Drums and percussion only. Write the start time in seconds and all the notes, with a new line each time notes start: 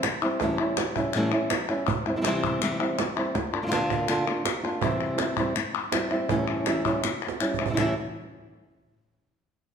0.03 cajon slap, clap
0.41 cajon bass, cajon slap
0.58 clap
0.77 cajon slap, clap
0.96 cajon bass, clap
1.13 clap
1.32 clap
1.50 cajon slap, clap
1.69 cajon slap, clap
1.88 cajon bass
2.24 cajon slap, clap
2.44 cajon bass
2.62 clap
2.80 clap
2.99 cajon slap, clap
3.35 cajon bass, cajon slap
3.72 cajon slap, clap
3.90 cajon bass, clap
4.08 cajon slap, clap
4.27 clap
4.45 cajon slap, clap
4.64 cajon slap, clap
4.81 cajon bass
5.00 clap
5.18 cajon slap, clap
5.37 cajon bass, clap
5.56 cajon slap, clap
5.92 cajon slap, clap
6.11 cajon slap, clap
6.29 cajon bass, clap
6.66 cajon slap, clap
6.85 cajon bass, clap
7.04 cajon slap, clap
7.22 clap
7.28 cajon slap
7.40 clap
7.54 cajon bass
7.66 cajon bass
7.77 cajon bass, clap